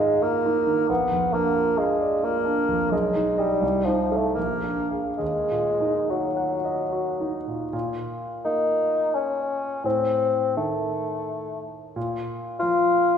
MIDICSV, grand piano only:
0, 0, Header, 1, 2, 480
1, 0, Start_track
1, 0, Tempo, 668151
1, 642, Time_signature, 3, 2, 24, 8
1, 1604, Tempo, 694444
1, 2564, Tempo, 737101
1, 3044, Tempo, 865801
1, 4004, Tempo, 823045
1, 4964, Tempo, 707547
1, 7364, Tempo, 674157
1, 8720, End_track
2, 0, Start_track
2, 0, Title_t, "Grand piano"
2, 0, Program_c, 0, 0
2, 0, Control_c, 0, 64, 127
2, 0, Note_on_c, 0, 44, 39
2, 0, Note_on_c, 0, 51, 30
2, 0, Note_on_c, 0, 63, 32
2, 0, Note_on_c, 0, 65, 33
2, 0, Note_on_c, 0, 77, 31
2, 8, Note_on_c, 0, 75, 35
2, 107, Note_off_c, 0, 77, 0
2, 161, Note_off_c, 0, 65, 0
2, 161, Note_on_c, 0, 65, 34
2, 264, Note_off_c, 0, 75, 0
2, 331, Note_off_c, 0, 63, 0
2, 331, Note_on_c, 0, 63, 31
2, 418, Note_off_c, 0, 65, 0
2, 479, Note_off_c, 0, 51, 0
2, 479, Note_on_c, 0, 51, 28
2, 581, Note_off_c, 0, 63, 0
2, 617, Note_off_c, 0, 44, 0
2, 639, Note_off_c, 0, 51, 0
2, 640, Note_on_c, 0, 34, 39
2, 654, Control_c, 0, 64, 0
2, 757, Control_c, 0, 64, 127
2, 802, Note_on_c, 0, 41, 31
2, 963, Note_on_c, 0, 62, 33
2, 1058, Note_off_c, 0, 41, 0
2, 1116, Note_on_c, 0, 65, 34
2, 1220, Note_off_c, 0, 62, 0
2, 1293, Note_on_c, 0, 77, 33
2, 1377, Note_off_c, 0, 65, 0
2, 1445, Note_on_c, 0, 74, 31
2, 1545, Note_off_c, 0, 77, 0
2, 1595, Note_on_c, 0, 65, 34
2, 1698, Note_off_c, 0, 74, 0
2, 1751, Note_on_c, 0, 62, 32
2, 1851, Note_off_c, 0, 65, 0
2, 1917, Note_on_c, 0, 41, 30
2, 2011, Note_off_c, 0, 62, 0
2, 2052, Note_off_c, 0, 34, 0
2, 2075, Note_on_c, 0, 35, 42
2, 2079, Note_off_c, 0, 41, 0
2, 2092, Control_c, 0, 64, 0
2, 2212, Control_c, 0, 64, 127
2, 2237, Note_on_c, 0, 63, 30
2, 2396, Note_on_c, 0, 75, 31
2, 2397, Note_on_c, 0, 68, 29
2, 2497, Note_off_c, 0, 63, 0
2, 2545, Note_off_c, 0, 68, 0
2, 2545, Note_off_c, 0, 75, 0
2, 2547, Note_off_c, 0, 35, 0
2, 2558, Note_on_c, 0, 36, 38
2, 2577, Control_c, 0, 64, 0
2, 2673, Control_c, 0, 64, 127
2, 2724, Note_on_c, 0, 63, 28
2, 2884, Note_on_c, 0, 69, 25
2, 2887, Note_on_c, 0, 77, 26
2, 2980, Note_off_c, 0, 63, 0
2, 3027, Note_off_c, 0, 36, 0
2, 3031, Note_off_c, 0, 69, 0
2, 3033, Note_off_c, 0, 77, 0
2, 3049, Note_on_c, 0, 34, 35
2, 3055, Control_c, 0, 64, 0
2, 3170, Control_c, 0, 64, 127
2, 3195, Note_on_c, 0, 62, 26
2, 3351, Note_on_c, 0, 77, 26
2, 3352, Note_on_c, 0, 68, 23
2, 3447, Note_off_c, 0, 62, 0
2, 3498, Note_off_c, 0, 68, 0
2, 3498, Note_off_c, 0, 77, 0
2, 3502, Note_off_c, 0, 34, 0
2, 3506, Note_on_c, 0, 39, 34
2, 3525, Control_c, 0, 64, 0
2, 3658, Control_c, 0, 64, 127
2, 3683, Note_on_c, 0, 46, 26
2, 3846, Note_on_c, 0, 63, 25
2, 3942, Note_off_c, 0, 46, 0
2, 4009, Note_on_c, 0, 66, 25
2, 4105, Note_off_c, 0, 63, 0
2, 4165, Note_on_c, 0, 78, 26
2, 4269, Note_off_c, 0, 66, 0
2, 4328, Note_on_c, 0, 75, 25
2, 4425, Note_off_c, 0, 78, 0
2, 4486, Note_on_c, 0, 66, 25
2, 4587, Note_off_c, 0, 75, 0
2, 4653, Note_on_c, 0, 63, 25
2, 4749, Note_off_c, 0, 66, 0
2, 4811, Note_on_c, 0, 46, 22
2, 4907, Note_off_c, 0, 63, 0
2, 4937, Note_off_c, 0, 39, 0
2, 4951, Note_off_c, 0, 46, 0
2, 4960, Note_on_c, 0, 46, 40
2, 4976, Control_c, 0, 64, 0
2, 5085, Control_c, 0, 64, 127
2, 5446, Note_on_c, 0, 58, 29
2, 6367, Note_off_c, 0, 46, 0
2, 6391, Note_on_c, 0, 45, 40
2, 6395, Note_off_c, 0, 58, 0
2, 6407, Control_c, 0, 64, 0
2, 6513, Control_c, 0, 64, 127
2, 6886, Note_on_c, 0, 51, 33
2, 7821, Note_off_c, 0, 45, 0
2, 7852, Note_on_c, 0, 46, 42
2, 7853, Note_off_c, 0, 51, 0
2, 7866, Control_c, 0, 64, 0
2, 7982, Control_c, 0, 64, 127
2, 8324, Note_on_c, 0, 53, 33
2, 8720, Note_off_c, 0, 46, 0
2, 8720, Note_off_c, 0, 53, 0
2, 8720, End_track
0, 0, End_of_file